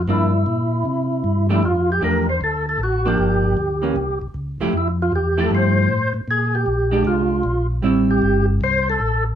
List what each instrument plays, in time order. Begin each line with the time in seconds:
0.08 tonewheel organ G2 E4, hollow-body jazz guitar F3 A#3 D4
0.46 tonewheel organ A#2
0.85 tonewheel organ C3
1.24 tonewheel organ G2
1.49 hollow-body jazz guitar F3 A3 D4 G4, tonewheel organ E4
1.63 tonewheel organ F2 F4
1.92 tonewheel organ G4
2.01 tonewheel organ E2 A#4, hollow-body jazz guitar F3 A3 D4 G4
2.29 tonewheel organ C5
2.41 tonewheel organ D2 A4
2.69 tonewheel organ A4
2.79 tonewheel organ A1
2.83 tonewheel organ F#4
3.05 hollow-body jazz guitar F3 A#3 D4, tonewheel organ G4
3.18 tonewheel organ G1
3.57 tonewheel organ D2
3.82 hollow-body jazz guitar E3 A#3 C#4
3.96 tonewheel organ C2
4.21 tonewheel organ C2
4.34 tonewheel organ C#2
4.60 tonewheel organ C#2, hollow-body jazz guitar F3 A3 E4 G4
4.73 tonewheel organ F2
4.77 tonewheel organ E4
5.02 tonewheel organ F4
5.12 tonewheel organ E2 G4
5.37 hollow-body jazz guitar F3 A3 E4 G4, tonewheel organ A4
5.51 tonewheel organ G2 C5
5.89 tonewheel organ A2
6.14 tonewheel organ A2
6.28 tonewheel organ A#2 G#4
6.55 tonewheel organ G4
6.66 tonewheel organ A#1
6.91 hollow-body jazz guitar G#3 D4 G4
7.05 tonewheel organ C2 F4
7.43 tonewheel organ A#1
7.82 tonewheel organ A1, hollow-body jazz guitar G3 C4 E4
8.11 tonewheel organ G4
8.22 tonewheel organ G1
8.61 tonewheel organ C2 C5
8.90 tonewheel organ A4
9.00 tonewheel organ A1